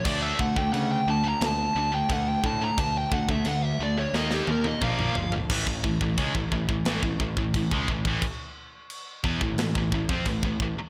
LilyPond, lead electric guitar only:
\new Staff \with { instrumentName = "Lead electric guitar" } { \time 4/4 \tempo 4 = 88 d''16 e''16 fis''16 g''16 fis''16 g''16 a''16 bes''16 a''8. g''16 fis''16 g''16 a''16 bes''16 | a''16 g''16 fis''16 e''16 fis''16 e''16 d''16 cis''16 dis''16 g'16 ais'16 dis''16 f''8. r16 | r1 | r1 | }